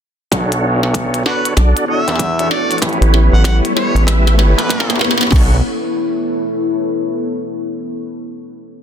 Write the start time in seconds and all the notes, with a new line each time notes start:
0.32 B1 B3 D4 F#4 A4 C#5, kick, snare, closed hi-hat, riser
0.52 closed hi-hat
0.62 E4
0.83 snare
0.94 A4, kick, closed hi-hat
1.14 closed hi-hat
1.26 D4 F#4 A4 B4 C#5, snare
1.41 C#5
1.45 closed hi-hat
1.57 B1 D4 A4 D5, kick, snare, closed hi-hat
1.77 closed hi-hat
1.88 D4 F#4 A4 C#5 E5
2.08 E2, snare, closed hi-hat
2.16 kick, snare, closed hi-hat
2.39 D4 F#4 A4 C#5, closed hi-hat
2.51 D5, snare
2.71 closed hi-hat
2.78 A1 E4 G4 B4 C#5, kick, closed hi-hat
2.82 snare, closed hi-hat
2.89 closed hi-hat
2.93 closed hi-hat
3.01 A1, closed hi-hat
3.14 snare
3.32 A1 F#5
3.44 F#5, kick, snare, closed hi-hat
3.65 closed hi-hat
3.76 E4 G4 B4 C#5, snare
3.95 A1, closed hi-hat
4.07 E4 G4 B4 E5, kick, snare, closed hi-hat
4.27 snare, closed hi-hat
4.37 G#1 E4 G4 B4 C#5, snare
4.58 A1 B4, snare, closed hi-hat
4.69 kick, snare, closed hi-hat
4.80 snare
4.89 E4 G4 B4 C#5, snare, closed hi-hat
4.96 snare
4.99 snare
5.01 snare
5.04 snare
5.11 snare
5.18 snare
5.21 snare, closed hi-hat
5.23 snare
5.27 snare
5.31 B1 B3 D4 F#4 A4 C#5, kick, snare, crash
5.36 snare
5.43 E4
5.53 A4
5.61 C#5